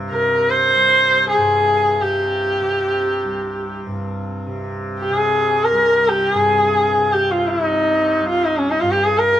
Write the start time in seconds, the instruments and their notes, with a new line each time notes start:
Already playing: tanpura C2 G2 C3
0.11 tanpura C3, sarangi A#4
0.50 sarangi C5
0.75 tanpura C2
1.29 sarangi G#4
1.37 tanpura G2
2.00 tanpura C3, sarangi G4
2.61 tanpura C3
3.24 tanpura C2
3.86 tanpura G2
4.47 tanpura C3
5.00 sarangi G4
5.10 tanpura C3
5.15 sarangi G#4
5.64 sarangi A#4
5.72 tanpura C2
6.08 sarangi G4
6.34 tanpura G2, sarangi G#4
6.98 tanpura C3
7.13 sarangi G4
7.31 sarangi F4
7.49 sarangi E4
7.57 tanpura C3
7.64 sarangi D#4
8.20 tanpura C2
8.29 sarangi F4
8.45 sarangi D#4
8.57 sarangi C#4
8.70 sarangi D#4
8.80 tanpura G2, sarangi F4
8.91 sarangi G4
9.04 sarangi G#4
9.18 sarangi A#4